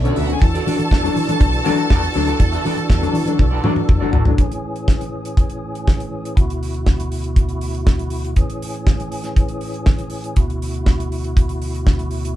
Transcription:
Already playing: tonewheel organ A3 B3 D4
0.00 grand piano D3, violin section C#4 C#5, clean electric guitar D5
0.04 grand piano A3 C#4, clean electric guitar F#4 A4, violin section D5, closed hi-hat
0.09 violin section D4
0.16 fingered electric bass D2, grand piano B2, violin section E4 E5, clean electric guitar F#4 A4 D5, open hi-hat
0.25 grand piano D3, violin section F#4 F#5
0.29 grand piano A3 C#4, violin section G#4 G#5, muted clean electric guitar stroke, closed hi-hat
0.40 fingered electric bass E2, grand piano E3, tonewheel organ E3 D4 F#4 A4, violin section A4 A5, muted clean electric guitar stroke, kick, closed hi-hat
0.54 clean electric guitar F#4 A4 D5, closed hi-hat
0.66 fingered electric bass E3, grand piano A3 D4, clean electric guitar F#4 A4 D5, open hi-hat
0.79 fingered electric bass E3, muted clean electric guitar stroke, closed hi-hat
0.91 fingered electric bass E2, muted clean electric guitar stroke, kick, snare
1.03 grand piano F#3 A3 D4, muted clean electric guitar stroke, closed hi-hat
1.15 grand piano E3, fingered electric bass E3, open hi-hat
1.27 fingered electric bass E3, grand piano F#3 A3 D4, muted clean electric guitar stroke, closed hi-hat
1.41 fingered electric bass B1, kick, closed hi-hat
1.53 muted clean electric guitar stroke, closed hi-hat
1.64 fingered electric bass E3, grand piano F#3 A3 D4, clean electric guitar F#4 A4 D5, open hi-hat
1.77 muted clean electric guitar stroke, closed hi-hat
1.90 fingered electric bass E2, clean electric guitar F#4 A4 D5, kick, snare
2.02 muted clean electric guitar stroke, closed hi-hat
2.14 fingered electric bass D2, grand piano F#3 A3 D4, muted clean electric guitar stroke, open hi-hat
2.27 clean electric guitar F#4 A4 D5, closed hi-hat
2.40 fingered electric bass E2, grand piano E3, muted clean electric guitar stroke, kick, closed hi-hat
2.52 clean electric guitar F#4 A4 E5, closed hi-hat
2.64 fingered electric bass E3, grand piano A3 D4, clean electric guitar F#4 A4 D5, open hi-hat
2.77 fingered electric bass E3, muted clean electric guitar stroke, closed hi-hat
2.89 fingered electric bass E2, muted clean electric guitar stroke, kick, snare
3.02 grand piano F#3 A3 D4, muted clean electric guitar stroke, closed hi-hat
3.13 fingered electric bass E3, grand piano E3, open hi-hat
3.26 fingered electric bass E3, grand piano F#3 A3 D4, muted clean electric guitar stroke, closed hi-hat
3.39 fingered electric bass B1, muted clean electric guitar stroke, kick, high tom
3.51 clean electric guitar F#4 A4 D5
3.64 fingered electric bass E3, grand piano F#3 A3 D4, clean electric guitar F#4 A4 D5, mid tom
3.76 muted clean electric guitar stroke, mid tom
3.88 fingered electric bass F#1, muted clean electric guitar stroke, kick, mid tom
4.00 grand piano F#3 A3 D4, clean electric guitar F#4 A4 D5
4.13 fingered electric bass G#1, grand piano E3, clean electric guitar F#4 A4 D5, floor tom
4.25 grand piano F#3 A3 D4, muted clean electric guitar stroke, floor tom
4.38 tonewheel organ A2 E3 C#4 G#4, kick, closed hi-hat
4.52 closed hi-hat
4.76 closed hi-hat
4.88 kick, snare
5.01 closed hi-hat
5.25 closed hi-hat
5.37 kick, closed hi-hat
5.50 closed hi-hat
5.75 closed hi-hat
5.88 kick, snare
6.00 closed hi-hat
6.25 closed hi-hat
6.35 tonewheel organ D2 B2 E4 F#4, kick, closed hi-hat
6.50 closed hi-hat
6.63 open hi-hat
6.74 closed hi-hat
6.86 kick, snare
7.00 closed hi-hat
7.12 open hi-hat
7.24 closed hi-hat
7.36 kick, closed hi-hat
7.49 closed hi-hat
7.61 open hi-hat
7.75 closed hi-hat
7.87 kick, snare
7.99 closed hi-hat
8.10 open hi-hat
8.24 closed hi-hat
8.36 tonewheel organ A2 E3 C#4 G#4, kick, closed hi-hat
8.50 closed hi-hat
8.62 open hi-hat
8.74 closed hi-hat
8.87 kick, snare
9.00 closed hi-hat
9.12 open hi-hat
9.24 snare, closed hi-hat
9.36 kick, closed hi-hat
9.48 closed hi-hat
9.61 open hi-hat
9.74 closed hi-hat
9.86 kick, snare
9.98 closed hi-hat
10.10 open hi-hat
10.24 closed hi-hat
10.36 tonewheel organ D2 B2 E4 F#4, kick, closed hi-hat
10.50 closed hi-hat
10.62 open hi-hat
10.74 closed hi-hat
10.86 kick, snare
11.00 closed hi-hat
11.12 open hi-hat
11.24 closed hi-hat
11.37 kick, closed hi-hat
11.49 closed hi-hat
11.62 open hi-hat
11.75 closed hi-hat
11.87 kick, snare
11.99 closed hi-hat
12.11 open hi-hat
12.25 closed hi-hat

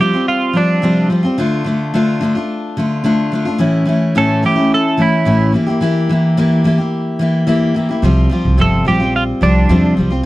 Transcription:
0.00 steel-string acoustic guitar F3 G3 C4 F4, clean electric guitar G4
0.13 steel-string acoustic guitar G3 C4 F4
0.28 clean electric guitar F4
0.53 steel-string acoustic guitar F3 G3 C4 F4, clean electric guitar D4
0.82 steel-string acoustic guitar C3 F3 G3 C4 F4
1.10 steel-string acoustic guitar F3 G3 C4 F4
1.23 steel-string acoustic guitar G3 C4 F4
1.38 steel-string acoustic guitar D3 A3 D4 F4
1.64 steel-string acoustic guitar D3 A3 D4
1.68 steel-string acoustic guitar F4
1.94 steel-string acoustic guitar D3 A3 D4 F4
2.21 steel-string acoustic guitar D3 A3 D4 F4
2.35 steel-string acoustic guitar A3 D4 F4
2.77 steel-string acoustic guitar D3 A3 D4 F4
3.04 steel-string acoustic guitar D3 A3 D4 F4
3.32 steel-string acoustic guitar D3 A3 D4 F4
3.45 steel-string acoustic guitar A3 D4 F4
3.58 steel-string acoustic guitar A2 E3 A3 C#4 E4
3.85 steel-string acoustic guitar E3 A3 C#4 E4
4.15 steel-string acoustic guitar A2 E3 A3 C#4 E4, clean electric guitar A4
4.43 steel-string acoustic guitar E3 A3 C#4 E4, clean electric guitar G4
4.56 steel-string acoustic guitar A3 C#4 E4
4.74 clean electric guitar A4
4.97 steel-string acoustic guitar E3 A3 C#4 E4
5.02 clean electric guitar E4
5.25 steel-string acoustic guitar A2 E3 A3 C#4 E4
5.52 steel-string acoustic guitar E3 A#3 E4 G4
5.67 steel-string acoustic guitar A#3 E4 G4
5.81 steel-string acoustic guitar E3 A#3 E4 G4
6.09 steel-string acoustic guitar E3 A#3 E4 G4
6.37 steel-string acoustic guitar E3 A#3 E4 G4
6.64 steel-string acoustic guitar E3 A#3 E4 G4
6.78 steel-string acoustic guitar A#3 E4 G4
7.19 steel-string acoustic guitar E3 A#3 E4 G4
7.47 steel-string acoustic guitar E3 A#3 E4 G4
7.74 steel-string acoustic guitar E3 A#3 E4 G4
7.89 steel-string acoustic guitar A#3 E4 G4
8.02 upright bass C2, steel-string acoustic guitar C3 F3 G3 C4 F4
8.29 steel-string acoustic guitar F3 G3 C4 F4
8.45 upright bass C2
8.57 upright bass G1, steel-string acoustic guitar C3 F3 G3 C4 F4, clean electric guitar A4
8.85 upright bass A#1, steel-string acoustic guitar F3 G3 C4 F4, clean electric guitar G4
9.00 steel-string acoustic guitar G3 C4 F4
9.16 clean electric guitar F4
9.41 upright bass C2, steel-string acoustic guitar F3 G3 C4 F4, clean electric guitar D4
9.69 upright bass E2, steel-string acoustic guitar C3 F3 G3 C4 F4
9.97 upright bass C2, steel-string acoustic guitar F3 G3 C4 F4
10.10 steel-string acoustic guitar G3 C4 F4

